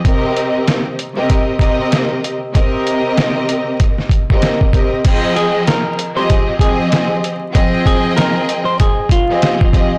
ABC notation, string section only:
X:1
M:4/4
L:1/16
Q:"Swing 16ths" 1/4=96
K:Fm
V:1 name="String section"
[C,CGBe]6 z [C,CGBe]3 [C,CGBe]4- [C,CGBe] z | [C,CGBe]8- [C,CGBe]2 z [C,CGBe]3 [C,CGBe]2 | [F,CAeg]6 z [F,CGAe]3 [F,CGAe]4- [F,CGAe] z | [F,CAeg]8- [F,CAeg]2 z [F,CGAe]3 [F,CGAe]2 |]